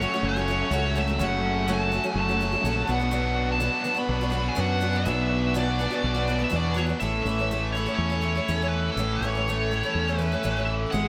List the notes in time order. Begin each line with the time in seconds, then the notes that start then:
Already playing: F#2 F#3 C#4 F#4 A4 C#5 F#5
0.01 F#3 A3 C#4 F#4
0.14 F#3 A3 C#4 F#4
0.23 F#1 F#2 C#3 F#3 A3 C#4 F#4
0.29 C#5
0.36 F#3 A3 C#4 F#4
0.45 F#3 A3 C#4 F#4
0.50 C#4 F#4
0.71 C#2 F#2 C#3 F#3 A3 C#4 F#4
0.95 F#3 A3 C#4 F#4 E5
1.08 F#3 A3 C#4 F#4
1.19 F#1 F#2 C#3 F#3 A3 C#4 F#4
1.24 F#5
1.41 F#3 A3 C#4 F#4
1.68 F#2 C#3 F#3 A3 C#4 F#4
1.73 A5
1.89 F#3 A3 F#4
1.93 C#4 F#4
2.04 F#3 A3 C#4 F#4
2.12 F#1 F#2 C#3 F#3 A3 C#4 F#4
2.19 A5
2.29 F#3 A3 C#4 F#4
2.37 F#3 C#4 F#4
2.42 A3 C#4 F#4
2.52 F#3 A3 C#4 F#4
2.64 A#1 F#2 C#3 F#3 A3 C#4 F#4
2.85 B1 B2 F#3 B3 F#4 B4 D5
2.90 D4 F#4 F#5
3.00 B3 D4 F#4
3.11 B2 F#3 B3 D4 F#4
3.36 B3 D4 F#4
3.52 A5
3.60 B2 F#3 B3 D4 F#4
3.84 F#3 B3 D4 F#4
3.94 B3 D4 F#4 B5
4.08 B1 B2 F#3 B3 D4 F#4
4.21 B3 D4 F#4
4.30 F#3 B3 D4 F#4
4.48 G#5
4.55 F#2 B2 F#3 B3 D4 F#4
4.61 F#5
4.80 F#3 B3 D4 F#4 G#5
4.93 B3 D4 F#4 E5
5.05 B1 B2 F#3 B3 D4 F#4
5.30 B3 D4 F#4
5.54 B2 F#3 B3 D4 F#4
5.59 D5
5.79 F#3 B3 D4 F#4
5.91 B3 D4 F#4
5.95 D5
6.02 B1 B2 F#3 B3 D4 F#4
6.15 B3 D4 F#4
6.28 F#3 B3 D4 F#4
6.39 B3 D4 F#4
6.44 E5
6.50 E2 B2 F#3 B3 D4 F#4
6.56 D4 F#4 D5
6.74 F#3 B3 D4 F#4 C#5
6.87 B3 D4 F#4
7.00 A1 A2 E3 A3 C#4 A4 E5
7.23 A1 E3 A3 C#4 E5
7.29 A4
7.39 A3 C#4 A4
7.51 A2 E3 A3 C#4 A4
7.72 E3 E4 C#5
7.76 A3 C#4 A4
7.86 A3 C#4 A4
7.95 E2 C#5
8.01 C#4
8.10 A3 C#4 A4
8.21 E3 A3 C#4 E4 A4
8.35 A3 C#4 A4
8.48 E2 A2 E3 A3 C#4 A4
8.62 A3 C#4 A4
8.68 B4
8.75 E3
8.92 A4
8.96 A1 A2 E3 A3 C#4 A4
9.16 C#5
9.21 A1 E3 A3 C#4 A4
9.35 A3 C#4 A4
9.48 A2 E3 A3 C#4 A4
9.71 E3 A3 C#4 E4 A4
9.83 A3 C#4 A4
9.95 E2 C#4
10.08 A3 C#4 A4
10.18 E3 A3 C#4 E4 A4 B4
10.32 A3 C#4 A4
10.43 A1 A2 E3 A3 C#4 A4
10.57 A3 C#4 A4
10.65 E5
10.70 E3
10.91 G#1 G#3 B3 E4 G#4 F#5